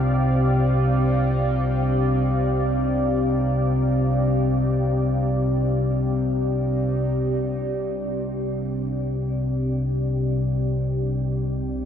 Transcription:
Already playing: C2 C3 C4 D#4 G4 D5 F5
7.16 C2 C3
8.16 D#5

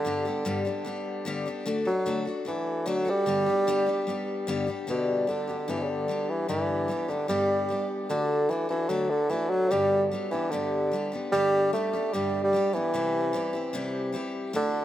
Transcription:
Already playing: D3
0.05 G2 D3 G3 B3 D4 G4
0.25 G3 B3 D4 G4
0.45 G2 D3 G3 B3 D4 G4
0.65 G3 B3 D4 G4
0.84 G3 B3 D4 G4
1.25 G2 D3 G3 B3 D4 G4
1.46 G3 B3 D4 G4
1.66 D3 A3 D4 F#4 A4
1.85 F#3 D4 F#4 A4
2.06 D3 A3 D4 F#4 A4
2.25 D4 F#4 A4
2.45 E3 A3 D4 F#4 A4
2.86 D3 F#3 A3 D4 F#4 A4
3.05 D4 F#4 A4
3.10 G3
3.26 G2 D3 G3 B3 D4 G4
3.46 G3 B3 D4 G4
3.67 G2 D3 G3 B3 D4 G4
3.86 G3 B3 D4 G4
4.07 G3 B3 D4 G4
4.47 G2 D3 G3 B3 D4 G4
4.67 G3 B3 D4 G4
4.87 G2 B2 D3 G3 B3 D4 G4
5.27 D3 G3 B3 D4 G4
5.48 G3 B3 D4 G4
5.68 G2 D3 E3 G3 B3 D4 G4
5.82 C#3
5.89 D3
6.08 G3 B3 D4 G4
6.30 E3
6.48 G2 D3 E3 G3 B3 D4 G4
6.88 G3 B3 D4 G4
7.08 D3 G3 B3 D4 G4
7.28 G2 D3 G3 B3 D4 G4
7.69 G3 B3 D4 G4
8.09 D3 A3 D4 F#4 A4
8.49 E3 A3 D4 F#4 A4
8.69 E3 D4 F#4 A4
8.89 D3 F#3 A3 D4 F#4 A4
9.10 D3
9.30 E3 A3 D4 F#4 A4
9.50 F#3
9.70 G2 D3 G3 B3 D4 G4
10.12 G3 B3 D4 G4
10.31 E3 G3 B3 D4 G4
10.50 G2 D3 G3 B3 D4 G4
10.92 G3 B3 D4 G4
11.12 G3 B3 D4 G4
11.32 G2 D3 G3 B3 D4 G4
11.73 G3 A3 B3 D4 G4
11.93 G3 B3 D4 G4
12.13 G2 D3 G3 B3 D4 G4
12.44 G3
12.53 G3 B3 D4 G4
12.73 E3 G3 B3 D4 G4
12.94 C3 G3 C4 E4 G4
13.33 G3 C4 E4 G4
13.53 C4 E4 G4
13.73 C3 G3 C4 E4 G4
14.13 G3 C4 E4 G4
14.53 D3 A3 D4 F#4 A4

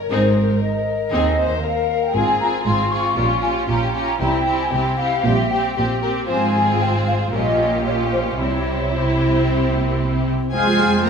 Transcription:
Already playing: A#4
0.08 G#1 G#2 C4 D#4 G#4 C5
0.61 D#5
1.11 D#2 C4 D#4 G#4
1.37 C5
1.63 A#4 F5
2.02 G5
2.14 G#1 G#2 C4 F4 G#4 G#5
2.40 C4 F4 G#4 A#5
2.65 G#1 G#2 C4 F4 G#4 C6
2.91 C4 F4 G#4 C#6
3.16 A#1 A#2 G3 C#4 F4 G4
3.41 C#4 F4 G4 G#5
3.68 A#1 A#2 C#4 F4 G4 A#5
3.94 C#4 F4 G4 A#5
4.20 C2 C3 G3 C4 E4 G4 G5
4.46 C4 E4 G4
4.60 G#5
4.72 C2 C3 C4 E4 G4 G5
4.98 C4 E4 G4 F5
5.25 A#1 A#2 G3 C4 G4 E5
5.50 C4 G4 G5
5.76 A#1 A#2 C4 G4
6.02 C4 G4 A#4
6.28 G#1 G#2 F3 C4 F4 G#4 C5 G#5
6.54 G#4
6.80 C5 G5
7.07 F5
7.32 A#1 A#2 G3 C#4 F4 G4 A#4 D#5
7.58 G4
7.85 C#4 F4 G4 C#5
8.12 C5
8.39 C2 C3 G3 C4 E4 G4 C#5
8.93 C4 E4 G4 C5
9.45 C4
9.72 A#3
9.99 C4
10.52 F2 G#3 C4 F4 G#4 C5 G#5 F6
10.66 C4 G#4
10.79 G#3 F4
10.92 C4 G#4
11.05 G#3 A#3 F4 A#4 A#5

